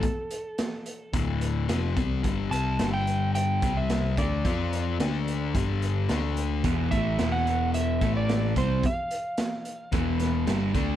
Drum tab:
HH |xxxxxxxx|xxxxxxxx|xxxxxxxx|xxxxxxxx|
SD |--o---o-|--o---o-|--o---o-|--o---o-|
BD |o---o--o|o----o-o|o---o---|oo---o-o|

HH |xxxxxxxx|
SD |--o--oo-|
BD |o---o--o|